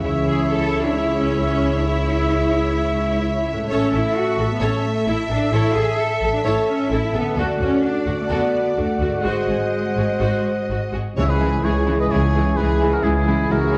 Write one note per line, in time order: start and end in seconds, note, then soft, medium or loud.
0.00 3.62 C#3 soft
0.00 3.64 E3 soft
0.00 3.66 C#4 soft
0.00 3.60 E4 soft
0.00 3.53 E5 medium
0.00 3.65 E5 soft
0.04 3.65 C#2 medium
0.04 3.53 E4 medium
0.04 0.12 E4 medium
0.04 3.65 E4 soft
0.04 0.94 G#4 soft
0.04 3.66 C#5 soft
0.04 0.96 E5 soft
0.27 0.50 G#4 medium
0.51 0.84 A4 medium
0.84 0.96 D4 medium
0.95 1.19 E4 medium
0.95 1.40 G#4 medium
0.95 1.42 E5 soft
1.19 1.40 C#4 medium
1.41 1.75 C#4 medium
1.41 1.86 G#4 soft
1.41 1.88 E5 soft
1.76 1.88 D4 soft
1.87 3.21 E4 medium
1.87 3.38 G#4 medium
1.87 3.40 E5 medium
3.52 7.31 A2 medium
3.57 7.23 A3 soft
3.61 7.35 E4 soft
3.69 3.78 A1 medium
3.69 3.92 C#4 medium
3.69 4.57 A4 medium
3.69 3.91 A4 soft
3.69 7.34 A4 medium
3.69 3.91 C#5 medium
3.69 4.57 E5 medium
3.69 7.34 E5 medium
3.92 4.00 A1 soft
3.92 4.16 E4 medium
3.92 4.01 A4 soft
3.92 4.02 A4 soft
4.17 4.50 F#4 medium
4.38 4.46 A1 soft
4.38 4.46 A4 soft
4.38 4.47 A4 soft
4.52 4.62 B3 medium
4.61 4.69 A1 medium
4.61 4.85 C#4 medium
4.61 4.82 A4 medium
4.61 5.06 A4 medium
4.61 4.82 C#5 medium
4.61 5.07 E5 soft
4.86 5.08 A3 medium
5.06 5.15 A1 soft
5.06 5.14 E4 soft
5.06 5.31 E4 medium
5.06 5.52 A4 soft
5.06 5.15 A4 soft
5.10 5.53 E5 medium
5.29 5.37 A1 soft
5.29 5.53 D4 medium
5.29 5.38 A4 soft
5.29 5.39 A4 medium
5.52 5.60 A1 medium
5.52 5.76 E4 medium
5.52 5.98 A4 soft
5.52 5.74 A4 medium
5.52 5.75 C#5 soft
5.52 5.99 E5 soft
5.76 5.84 A1 soft
5.76 5.99 G#4 medium
5.76 5.84 A4 soft
5.76 5.85 A4 soft
5.98 6.44 A4 soft
5.98 6.34 A4 medium
5.98 6.45 E5 soft
6.21 6.29 A1 soft
6.21 6.31 A4 soft
6.21 6.32 A4 soft
6.35 6.39 D4 medium
6.45 6.53 A1 medium
6.45 6.54 E4 medium
6.45 6.66 A4 soft
6.45 6.91 A4 soft
6.45 6.67 C#5 medium
6.45 6.91 E5 soft
6.68 6.91 C#4 medium
6.90 6.98 A1 soft
6.90 6.99 E4 soft
6.90 7.15 E4 medium
6.90 7.00 A4 soft
6.90 7.37 A4 soft
6.90 7.38 E5 soft
7.13 7.21 A1 soft
7.13 7.38 B3 medium
7.13 7.21 A4 soft
7.13 7.23 A4 soft
7.20 9.19 D3 soft
7.24 9.21 A3 soft
7.28 9.23 D4 soft
7.33 7.45 D2 medium
7.33 9.20 F#4 soft
7.37 7.61 A3 medium
7.37 7.60 F#4 soft
7.37 10.94 F#4 medium
7.37 7.59 A4 medium
7.37 7.83 A4 soft
7.37 9.26 D5 soft
7.37 9.23 D5 medium
7.37 7.83 F#5 soft
7.60 7.68 D2 soft
7.60 7.84 C#4 medium
7.60 7.69 F#4 soft
7.60 7.70 F#4 soft
7.84 8.19 D4 medium
7.84 8.77 A4 soft
7.84 8.77 F#5 soft
8.07 8.15 D2 soft
8.07 8.15 F#4 soft
8.07 8.16 F#4 soft
8.20 8.24 A3 soft
8.30 8.38 D2 soft
8.30 8.77 B3 medium
8.30 8.53 F#4 soft
8.30 8.52 A4 medium
8.77 8.86 D2 soft
8.77 9.25 A3 medium
8.77 8.86 D4 soft
8.77 8.85 F#4 soft
8.77 9.28 A4 soft
8.77 9.25 F#5 soft
9.00 9.08 D2 soft
9.00 9.09 F#4 soft
9.00 9.11 F#4 soft
9.07 11.10 G#2 soft
9.12 11.13 C4 soft
9.16 11.15 D#4 soft
9.21 9.33 G#1 soft
9.21 10.93 G#3 soft
9.21 11.17 F#4 soft
9.21 9.48 F#4 soft
9.21 9.48 C5 soft
9.25 10.90 C5 soft
9.25 10.94 C5 soft
9.25 10.94 D#5 soft
9.25 10.90 F#5 soft
9.49 9.57 G#1 soft
9.49 9.57 F#4 soft
9.49 9.58 G#4 soft
9.96 10.04 G#1 soft
9.96 10.05 F#4 soft
9.96 10.07 G#4 soft
10.20 10.28 G#1 soft
10.20 10.44 F#4 soft
10.20 10.44 C5 soft
10.70 10.78 G#1 soft
10.70 10.78 F#4 soft
10.70 10.79 F#4 soft
10.93 11.01 G#1 soft
10.93 11.02 F#4 soft
10.93 11.02 G#4 soft
11.16 11.59 C#2 medium
11.16 11.59 C#2 soft
11.16 13.04 C#3 medium
11.16 11.84 C#3 medium
11.16 13.78 E3 medium
11.16 11.26 E3 soft
11.16 11.26 G#3 soft
11.16 11.26 C#4 soft
11.16 13.78 E4 medium
11.16 11.27 E4 soft
11.16 13.78 G#4 soft
11.16 11.29 C#5 medium
11.16 11.32 E5 medium
11.29 11.64 G#4 medium
11.29 11.66 B4 medium
11.41 11.50 E3 soft
11.41 11.49 G#3 soft
11.41 11.49 C#4 soft
11.41 12.34 C#4 soft
11.41 11.49 E4 soft
11.63 12.06 C#2 medium
11.63 11.73 E3 soft
11.63 11.73 G#3 soft
11.63 11.72 C#4 soft
11.63 11.71 E4 soft
11.63 12.57 G#4 soft
11.63 11.99 G#4 soft
11.63 12.00 C#5 medium
11.86 11.97 E3 soft
11.86 11.96 G#3 soft
11.86 11.95 C#4 soft
11.86 11.94 E4 soft
11.86 12.81 E5 soft
12.00 12.12 B4 medium
12.00 12.13 D#5 medium
12.11 12.53 C#2 medium
12.11 12.53 C#2 soft
12.11 12.21 E3 soft
12.11 13.78 G#3 soft
12.11 12.21 G#3 soft
12.11 12.20 C#4 soft
12.11 12.20 E4 soft
12.11 12.56 G#4 medium
12.11 12.58 C#5 medium
12.34 12.44 E3 soft
12.34 12.44 G#3 soft
12.34 12.42 C#4 soft
12.34 13.27 C#4 soft
12.34 12.43 E4 soft
12.57 12.99 C#2 medium
12.57 12.99 C#2 soft
12.57 12.67 E3 soft
12.57 12.68 G#3 soft
12.57 12.66 C#4 soft
12.57 12.66 E4 soft
12.57 12.92 G#4 medium
12.57 13.51 G#4 soft
12.57 12.95 B4 medium
12.80 12.90 E3 soft
12.80 12.89 G#3 soft
12.80 12.89 C#4 soft
12.80 12.88 E4 soft
12.80 13.73 E5 soft
12.92 13.04 F#4 soft
12.92 13.05 A#4 medium
13.03 13.45 C#2 medium
13.03 13.78 C#3 soft
13.03 13.13 E3 soft
13.03 13.13 G#3 soft
13.03 13.11 C#4 soft
13.03 13.11 E4 soft
13.03 13.09 E4 medium
13.03 13.15 G#4 medium
13.15 13.50 E4 soft
13.15 13.53 G#4 medium
13.27 13.35 E3 soft
13.27 13.35 G#3 soft
13.27 13.35 C#4 soft
13.27 13.78 C#4 soft
13.27 13.36 E4 soft
13.50 13.78 C#2 medium
13.50 13.59 E3 soft
13.50 13.59 G#3 soft
13.50 13.58 C#4 soft
13.50 13.59 E4 soft
13.50 13.78 F#4 medium
13.50 13.78 G#4 soft
13.50 13.78 A#4 medium
13.72 13.78 E3 soft
13.72 13.78 G#3 soft
13.72 13.78 C#4 soft
13.72 13.78 E4 soft
13.72 13.78 E5 soft